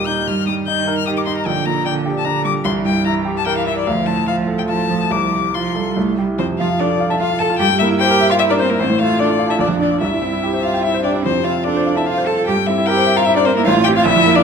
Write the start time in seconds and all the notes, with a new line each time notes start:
Already playing: D#2 A#2 G3 D#4 G4 A#4
0.07 D#4 G6
0.27 G2 D#3 F6
0.47 G3 D#6
0.67 D#3 D#4 G6
0.88 A#4
0.98 F6
1.06 D#3 G4 D#6
1.17 D6
1.26 D#4 C6
1.37 A#5
1.46 A#1 D3 G5
1.66 A#2 A#5
1.86 D3 D4 G5
2.06 G4
2.18 A5
2.25 D3 D4 A#5
2.45 G3 D6
2.64 C2 E3 C6
2.85 G2 G5
3.05 E3 E4 A#5
3.25 G4
3.38 A5
3.46 E3 A#4 G5
3.57 F5
3.67 E4 E5
3.78 D5
3.86 D2 F3 F5
4.06 A2 A5
4.27 F3 F4 F5
4.47 A4
4.58 G5
4.68 F3 F4 A5
4.90 F3
5.11 C2 F3 D6
5.33 C3
5.54 F3 F4 C6
5.75 G3 A4
5.97 C2 A3
6.18 G3 E4 G4
6.38 F2 C4 C5
6.50 C3
6.58 F3 F4 F5
6.70 F4
6.79 D4 A4 D5
6.90 F4
7.00 F5
7.10 E4 E5 A5
7.20 F4 F5
7.30 F4
7.39 A4 A5
7.50 F4
7.59 G2 G4 G5
7.70 G3
7.79 A#3 E4 E5
7.91 E4
7.99 G4 C5 G5
8.10 A#4
8.21 E5
8.30 F4 F5 C6
8.39 E4 E5
8.50 D4 A#4 D5
8.59 C4 C5
8.70 A#3 E4 A#4
8.79 A1 C4 C5
8.90 A2
8.99 A3 F4 F5
9.09 F4
9.19 D4 A4 D5
9.29 F4
9.39 F5
9.49 E4 E5 A5
9.59 A#1 D4 D5
9.69 F2
9.79 D4 D5
9.91 F4
10.00 C2 E4 E5
10.11 G2
10.22 C4
10.33 E4
10.44 G4
10.53 C5
10.63 F4 E5 F5
10.74 G5
10.82 E4 E5
10.94 C5
11.03 D4 G4 D5
11.15 E4
11.23 F2 C4 C5
11.36 C3
11.44 C4 F4 F5
11.56 F4
11.64 D4 A4 D5
11.76 C5
11.86 F5
11.96 E4 E5 A5
12.06 F4 F5
12.18 C5
12.26 A4 A5
12.37 F4
12.46 G2 G4 G5
12.57 G3
12.66 C4 E4 E5
12.78 E4
12.86 G4 A#4 G5
12.97 C5
13.07 E5
13.16 F4 F5 A#5
13.25 E4 E5
13.36 D4 C5 D5
13.45 C4 A#4 C5
13.56 A#3 E4 A#4
13.65 A1 F4 F5
13.77 A2
13.84 C4 G4 G5
13.96 F4 F5
14.05 A#1 E4 E5
14.16 F2
14.26 A#3
14.36 D4 F4 D5